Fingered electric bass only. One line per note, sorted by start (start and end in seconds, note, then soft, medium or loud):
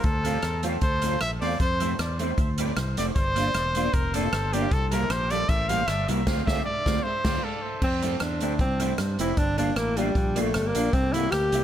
0.04 0.37 D2 medium
0.43 0.76 E2 medium
0.82 1.15 D2 medium
1.21 1.39 A#1 medium
1.42 1.58 E2 medium
1.60 1.93 F2 medium
1.99 2.32 E2 loud
2.38 2.71 D2 loud
2.77 2.94 C2 loud
2.97 3.13 F1 medium
3.16 3.49 G1 medium
3.54 3.88 E1 medium
3.94 4.27 F1 medium
4.33 4.66 G1 loud
4.72 5.04 C2 loud
5.10 5.43 A#1 loud
5.49 5.82 A1 loud
5.88 6.05 G1 loud
6.08 6.24 C2 medium
6.27 6.41 D2 loud
6.47 6.60 D2 loud
6.86 6.98 D2 loud
7.25 7.37 D2 loud
7.82 8.15 F2 loud
8.21 8.41 E2 medium
8.41 8.61 D2 medium
8.59 8.92 C2 loud
8.98 9.16 G2 loud
9.19 9.35 F1 medium
9.37 9.71 G1 medium
9.76 10.09 A1 medium
10.15 10.56 A#1 loud
10.54 10.72 G1 medium
10.75 10.90 A#1 medium
10.93 11.26 C2 loud
11.32 11.50 D2 medium
11.53 11.64 C2 loud